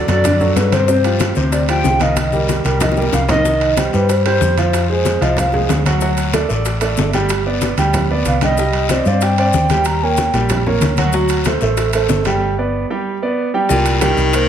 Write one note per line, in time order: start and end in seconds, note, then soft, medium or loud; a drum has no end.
0.08 0.53 F#2 medium
0.08 0.21 F#3 medium
0.08 0.22 F#4 medium
0.08 0.22 A4 medium
0.08 0.53 D5 medium
0.08 high bongo soft
0.08 high conga loud
0.08 high timbale medium
0.08 short guiro medium
0.08 maracas soft
0.24 0.38 D3 medium
0.24 0.38 D4 medium
0.24 0.38 D5 medium
0.24 high bongo medium
0.24 high conga soft
0.24 low conga medium
0.24 high timbale medium
0.24 long guiro medium
0.24 maracas medium
0.40 0.67 F#3 medium
0.40 0.67 F#4 medium
0.40 0.67 A4 medium
0.40 high bongo soft
0.40 high conga soft
0.40 low conga medium
0.40 maracas soft
0.56 1.31 G2 medium
0.56 0.71 B4 loud
0.56 high bongo soft
0.56 low bongo medium
0.56 high conga soft
0.56 high timbale medium
0.56 low timbale medium
0.56 short guiro medium
0.56 maracas medium
0.72 0.85 C3 medium
0.72 0.86 C4 loud
0.72 0.86 C5 medium
0.72 1.49 C5 loud
0.72 high bongo soft
0.72 high conga medium
0.72 high timbale medium
0.72 short guiro medium
0.72 maracas soft
0.88 1.02 C3 medium
0.88 1.01 C4 medium
0.88 1.02 C5 medium
0.88 high bongo medium
0.88 high conga soft
0.88 long guiro medium
0.88 maracas medium
1.04 1.31 F3 medium
1.04 1.31 F4 medium
1.04 1.31 G4 medium
1.04 high conga soft
1.04 high timbale medium
1.04 maracas soft
1.19 high bongo medium
1.19 high conga medium
1.19 high timbale medium
1.19 short guiro medium
1.19 maracas medium
1.35 1.81 D2 medium
1.35 1.63 C3 medium
1.35 1.63 C4 medium
1.35 1.63 C5 medium
1.35 high bongo soft
1.35 high conga soft
1.35 short guiro medium
1.35 maracas soft
1.52 1.60 D5 medium
1.52 high bongo medium
1.52 high conga soft
1.52 high timbale medium
1.52 long guiro medium
1.52 maracas medium
1.68 1.95 F3 medium
1.68 1.95 F4 medium
1.68 1.95 G4 medium
1.68 2.04 G5 loud
1.68 high bongo soft
1.68 high conga soft
1.68 high timbale loud
1.68 maracas soft
1.84 2.59 C2 medium
1.84 high bongo soft
1.84 low bongo medium
1.84 high conga medium
1.84 low timbale medium
1.84 short guiro medium
1.84 maracas medium
2.00 2.27 D#3 medium
2.00 2.27 D#4 medium
2.00 2.27 D#5 medium
2.00 2.19 F5 medium
2.00 high bongo soft
2.00 high conga medium
2.00 high timbale medium
2.00 short guiro medium
2.00 maracas soft
2.16 3.13 D#5 medium
2.16 high bongo medium
2.16 high conga medium
2.16 high timbale medium
2.16 long guiro medium
2.16 maracas medium
2.32 2.59 G3 medium
2.32 2.59 G4 medium
2.32 2.60 A#4 medium
2.32 high conga medium
2.32 maracas soft
2.48 high bongo medium
2.48 high conga medium
2.48 high timbale medium
2.48 short guiro medium
2.48 maracas medium
2.64 3.10 C2 medium
2.64 2.78 G3 medium
2.64 2.78 G4 medium
2.64 2.79 A#4 medium
2.64 high bongo soft
2.64 high timbale medium
2.64 short guiro medium
2.64 maracas soft
2.80 2.94 D#3 medium
2.80 2.95 D#4 medium
2.80 2.95 D#5 medium
2.80 high bongo medium
2.80 low conga medium
2.80 high timbale loud
2.80 long guiro medium
2.80 maracas medium
2.92 high bongo medium
2.97 3.23 G3 medium
2.97 3.23 G4 medium
2.97 3.24 A#4 medium
2.97 maracas soft
3.02 high bongo medium
3.13 3.88 C2 medium
3.13 3.21 F5 loud
3.13 low bongo medium
3.13 low conga medium
3.13 high timbale medium
3.13 short guiro medium
3.13 maracas medium
3.29 3.43 D#3 medium
3.29 3.43 D#4 medium
3.29 3.74 D#5 loud
3.29 3.43 D#5 medium
3.29 low conga loud
3.29 high timbale medium
3.29 short guiro medium
3.29 maracas soft
3.34 low bongo medium
3.45 3.72 D#3 medium
3.45 3.72 D#4 medium
3.45 3.72 D#5 medium
3.45 high bongo medium
3.45 high conga soft
3.45 long guiro medium
3.45 maracas medium
3.61 high conga soft
3.61 high timbale medium
3.77 3.91 G3 medium
3.77 3.91 G4 medium
3.77 3.91 C5 medium
3.77 high bongo medium
3.77 high conga medium
3.77 high timbale medium
3.77 short guiro medium
3.77 maracas medium
3.93 4.38 G2 medium
3.93 4.20 G3 medium
3.93 4.20 G4 medium
3.93 4.12 B4 medium
3.93 4.20 C5 medium
3.93 short guiro medium
3.93 maracas soft
4.09 4.26 C5 medium
4.09 high bongo medium
4.09 high conga soft
4.09 high timbale medium
4.09 long guiro medium
4.09 maracas medium
4.26 4.52 G3 medium
4.26 4.52 G4 medium
4.26 4.52 C5 medium
4.26 4.56 C5 loud
4.26 high conga soft
4.26 high timbale medium
4.41 5.16 F2 medium
4.41 high bongo medium
4.41 low bongo medium
4.41 high conga medium
4.41 short guiro medium
4.41 maracas medium
4.57 4.84 F3 medium
4.57 4.84 F4 medium
4.57 5.24 C5 medium
4.57 4.84 F5 medium
4.57 high conga medium
4.57 high timbale medium
4.57 short guiro medium
4.57 maracas soft
4.73 high bongo medium
4.73 high conga soft
4.73 high timbale medium
4.73 long guiro medium
4.73 maracas medium
4.89 5.16 G#3 medium
4.89 5.16 G#4 medium
4.89 5.17 C5 medium
4.89 high conga soft
5.05 high bongo medium
5.05 high conga medium
5.05 high timbale medium
5.05 short guiro medium
5.05 maracas medium
5.21 5.66 C2 medium
5.21 5.48 F3 medium
5.21 5.48 F4 medium
5.21 5.38 D#5 medium
5.21 5.48 F5 medium
5.21 high bongo soft
5.21 high conga soft
5.21 high timbale medium
5.21 short guiro medium
5.21 maracas soft
5.37 5.69 F5 medium
5.37 high bongo medium
5.37 high conga soft
5.37 low conga medium
5.37 high timbale loud
5.37 long guiro medium
5.37 maracas medium
5.52 5.80 G#3 medium
5.52 5.80 G#4 medium
5.52 5.80 C5 medium
5.52 high bongo soft
5.52 high conga soft
5.52 low conga medium
5.69 6.44 D2 medium
5.69 high bongo medium
5.69 low bongo medium
5.69 high conga medium
5.69 high timbale medium
5.69 low timbale medium
5.69 short guiro medium
5.69 maracas medium
5.86 5.99 F#3 medium
5.86 5.99 F#4 medium
5.86 6.00 F#5 medium
5.86 high bongo soft
5.86 high conga medium
5.86 high timbale loud
5.86 short guiro medium
5.86 maracas soft
6.01 6.28 F#3 medium
6.01 6.28 F#4 medium
6.01 6.29 F#5 medium
6.01 high bongo medium
6.01 high conga soft
6.01 long guiro medium
6.01 maracas medium
6.17 high conga soft
6.17 high timbale medium
6.17 maracas medium
6.33 6.47 A3 medium
6.33 6.47 A4 medium
6.33 6.47 D5 medium
6.33 high bongo medium
6.33 high conga medium
6.33 high timbale medium
6.33 short guiro medium
6.33 maracas medium
6.49 6.95 A1 medium
6.49 6.76 A3 medium
6.49 6.76 A4 medium
6.49 6.76 D5 medium
6.49 short guiro medium
6.49 maracas soft
6.65 high bongo medium
6.65 high conga soft
6.65 high timbale medium
6.65 long guiro medium
6.65 maracas medium
6.81 7.08 A3 medium
6.81 7.08 A4 medium
6.81 7.08 D5 medium
6.81 high conga soft
6.81 high timbale medium
6.81 maracas medium
6.97 7.72 G1 medium
6.97 high bongo medium
6.97 low bongo medium
6.97 high conga medium
6.97 low timbale medium
6.97 short guiro medium
6.97 maracas medium
7.13 7.40 G3 medium
7.13 7.41 G4 medium
7.13 7.41 G5 medium
7.13 high conga medium
7.13 high timbale medium
7.13 short guiro medium
7.13 maracas soft
7.29 high bongo medium
7.29 high conga soft
7.29 high timbale medium
7.29 long guiro medium
7.29 maracas medium
7.46 7.72 B3 medium
7.46 7.72 B4 medium
7.46 7.73 D5 medium
7.46 high conga soft
7.61 high bongo medium
7.61 high conga medium
7.61 high timbale medium
7.61 short guiro medium
7.61 maracas medium
7.77 8.22 D2 medium
7.77 8.05 G3 medium
7.77 8.05 G4 medium
7.77 8.05 G5 medium
7.77 high conga soft
7.77 high timbale medium
7.77 short guiro medium
7.77 maracas soft
7.93 high conga soft
7.93 low conga medium
7.93 high timbale medium
7.93 long guiro medium
7.93 maracas medium
8.10 8.36 B3 medium
8.10 8.37 B4 medium
8.10 8.37 D5 medium
8.10 high conga soft
8.25 9.00 C2 medium
8.25 8.34 F5 medium
8.25 high conga medium
8.25 high timbale medium
8.25 short guiro medium
8.25 maracas medium
8.41 8.55 G3 medium
8.41 8.56 G4 medium
8.41 9.08 D#5 medium
8.41 8.55 G5 medium
8.41 low bongo medium
8.41 high conga medium
8.41 high timbale medium
8.41 short guiro medium
8.41 maracas soft
8.57 8.85 G3 medium
8.57 8.85 G4 medium
8.57 8.85 G5 medium
8.57 high bongo medium
8.57 high conga soft
8.57 long guiro medium
8.57 maracas medium
8.73 high conga soft
8.73 high timbale medium
8.89 9.03 C4 medium
8.89 9.04 C5 medium
8.89 9.04 D5 medium
8.89 high bongo medium
8.89 high conga medium
8.89 high timbale medium
8.89 short guiro medium
8.89 maracas medium
9.05 9.50 G2 medium
9.05 9.33 C4 medium
9.05 9.33 C5 medium
9.05 9.33 D5 medium
9.05 9.24 F5 medium
9.05 short guiro medium
9.05 maracas soft
9.21 9.54 G5 loud
9.21 high bongo medium
9.21 high conga soft
9.21 high timbale medium
9.21 long guiro medium
9.21 maracas medium
9.38 9.65 C4 medium
9.38 9.65 C5 medium
9.38 9.65 D5 medium
9.38 high conga soft
9.38 high timbale medium
9.53 10.28 D#2 medium
9.53 9.87 G5 loud
9.53 high bongo medium
9.53 low bongo medium
9.53 high conga medium
9.53 short guiro medium
9.53 maracas medium
9.69 9.97 G3 medium
9.69 9.97 G4 medium
9.69 9.97 G5 medium
9.69 high conga medium
9.69 high timbale medium
9.69 short guiro medium
9.69 maracas soft
9.85 10.04 A#5 loud
9.85 high bongo medium
9.85 high conga soft
9.85 high timbale loud
9.85 long guiro medium
9.85 maracas medium
10.02 10.29 A#3 medium
10.02 10.29 A#4 medium
10.02 10.29 C#5 medium
10.02 10.66 G5 loud
10.02 high conga soft
10.17 high bongo medium
10.17 high conga medium
10.17 high timbale medium
10.17 short guiro medium
10.17 maracas medium
10.33 10.78 A#1 medium
10.33 10.61 G3 medium
10.33 10.61 G4 medium
10.33 10.61 G5 medium
10.33 high bongo soft
10.33 high conga soft
10.33 high timbale medium
10.33 short guiro medium
10.33 maracas soft
10.49 high bongo medium
10.49 high conga soft
10.49 low conga medium
10.49 high timbale medium
10.49 long guiro medium
10.49 maracas medium
10.67 10.93 A#3 medium
10.67 10.93 A#4 medium
10.67 10.93 C#5 medium
10.67 high bongo soft
10.67 high conga soft
10.67 low conga medium
10.81 11.56 D2 medium
10.81 high bongo medium
10.81 low bongo medium
10.81 high conga medium
10.81 high timbale medium
10.81 short guiro medium
10.81 maracas medium
10.97 11.11 F#3 medium
10.97 11.11 F#4 medium
10.97 11.12 F#5 medium
10.97 high bongo soft
10.97 high conga medium
10.97 high timbale medium
10.97 short guiro medium
10.97 maracas soft
11.13 11.40 F#3 medium
11.13 11.40 F#4 medium
11.13 11.41 F#5 medium
11.13 high bongo medium
11.13 high conga soft
11.13 long guiro medium
11.13 maracas medium
11.28 high conga soft
11.28 high timbale medium
11.28 maracas medium
11.44 11.59 A3 medium
11.44 11.59 A4 medium
11.44 11.60 C5 medium
11.44 high bongo medium
11.44 high conga medium
11.44 high timbale medium
11.44 short guiro medium
11.44 maracas medium
11.61 12.06 A1 medium
11.61 11.88 A3 medium
11.61 11.89 A4 medium
11.61 11.89 C5 medium
11.61 short guiro medium
11.61 maracas soft
11.77 high bongo medium
11.77 high conga soft
11.77 high timbale medium
11.77 long guiro medium
11.77 maracas medium
11.93 12.21 A3 medium
11.93 12.21 A4 medium
11.93 12.21 C5 medium
11.93 high conga soft
11.93 high timbale medium
11.93 maracas medium
12.09 12.84 G1 medium
12.09 high bongo medium
12.09 low bongo medium
12.09 high conga medium
12.09 low timbale medium
12.09 short guiro medium
12.09 maracas medium
12.24 12.52 G3 medium
12.24 12.52 G4 medium
12.24 12.53 G5 medium
12.24 high conga medium
12.24 high timbale medium
12.24 short guiro medium
12.24 maracas soft
12.58 12.84 B3 medium
12.58 12.85 B4 medium
12.58 12.84 D5 medium
12.90 13.16 G3 medium
12.90 13.17 G4 medium
12.90 13.16 G5 medium
13.22 13.48 B3 medium
13.22 13.48 B4 medium
13.22 13.49 D5 medium
13.54 13.67 G3 medium
13.54 13.67 G4 medium
13.54 13.67 G5 medium
13.69 14.14 C2 medium
13.69 14.03 A#2 loud
13.69 13.96 G3 medium
13.69 13.96 G4 medium
13.69 13.96 G5 medium
13.69 high bongo medium
13.69 high conga soft
13.69 long guiro medium
13.69 maracas medium
13.85 high conga soft
13.85 high timbale medium
13.85 maracas medium
14.01 14.49 D#3 loud
14.01 14.28 G3 medium
14.01 14.28 G4 medium
14.01 14.28 G5 medium
14.01 high bongo medium
14.01 high conga medium
14.01 high timbale medium
14.01 short guiro medium
14.01 maracas medium
14.17 14.49 C2 medium
14.17 short guiro medium
14.17 maracas soft
14.33 14.47 A#3 medium
14.33 14.47 A#4 medium
14.33 14.47 C5 medium
14.33 high bongo medium
14.33 high conga soft
14.33 high timbale medium
14.33 long guiro medium
14.33 maracas medium